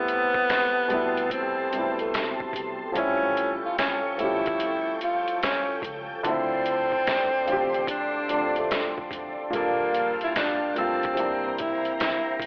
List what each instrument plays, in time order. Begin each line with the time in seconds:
Already playing: upright bass A1, upright piano C3 G3 A3 B3 E4, tenor saxophone B3, string machine G4 A4 A5 C6
0.08 closed hi-hat
0.34 kick
0.50 snare, closed hi-hat
0.88 upright bass B1, upright piano B2 G3 A3, closed hi-hat
0.92 upright piano B3 E4
1.17 closed hi-hat
1.30 tenor saxophone C4, kick, closed hi-hat
1.72 upright piano C3 G3 A3, closed hi-hat
1.77 upright piano B3 E4
1.99 tenor saxophone A3, closed hi-hat
2.14 snare, closed hi-hat
2.40 kick
2.53 upright bass C2, kick, closed hi-hat
2.92 upright piano F3 G3 A3, string machine F3 A4 G5 C#6, kick, closed hi-hat
2.96 upright bass A1, upright piano C4 E4, tenor saxophone C#4
3.03 upright piano C#4
3.37 closed hi-hat
3.65 tenor saxophone F4
3.78 tenor saxophone C#4, snare, closed hi-hat
4.17 upright bass B1, upright piano F3 G3 A3, tenor saxophone E4, closed hi-hat
4.22 upright piano C#4 G4
4.46 kick, closed hi-hat
4.60 closed hi-hat
5.01 tenor saxophone F4, closed hi-hat
5.28 closed hi-hat
5.43 tenor saxophone C#4, snare, closed hi-hat
5.82 upright bass C#2, kick, closed hi-hat
6.23 upright bass D2, upright piano D3 F3 A3, tenor saxophone C4, string machine D4 D5 C6, kick, closed hi-hat
6.28 upright piano C4 E4
6.66 closed hi-hat
6.92 kick
7.07 snare, closed hi-hat
7.45 upright piano D3 A3 F4, closed hi-hat
7.49 upright bass E2, upright piano C4 G4
7.74 closed hi-hat
7.87 tenor saxophone D4, kick, closed hi-hat
8.28 upright piano D3 F3 A3, closed hi-hat
8.33 upright piano C4 D4
8.56 tenor saxophone A3, closed hi-hat
8.71 snare, closed hi-hat
8.98 kick
9.11 upright bass F2, kick, closed hi-hat
9.50 upright bass G1, upright piano A#2 F3 G3, string machine F4 F5 G5 A5, kick, closed hi-hat
9.55 tenor saxophone A#3, upright piano D4 A4
9.94 closed hi-hat
10.21 tenor saxophone E4, closed hi-hat
10.36 tenor saxophone D4, snare, closed hi-hat
10.74 upright bass A1, upright piano F3 G3 A#3, tenor saxophone C4, closed hi-hat
10.79 upright piano A3 F4
11.03 kick, closed hi-hat
11.14 upright piano C3 E3 G3, string machine C5, closed hi-hat
11.18 upright bass C2, upright piano A#3 D4, string machine E4 A#5
11.58 tenor saxophone E4, kick, closed hi-hat
11.85 closed hi-hat
12.00 tenor saxophone E4, snare, closed hi-hat
12.39 upright bass A#1, kick, closed hi-hat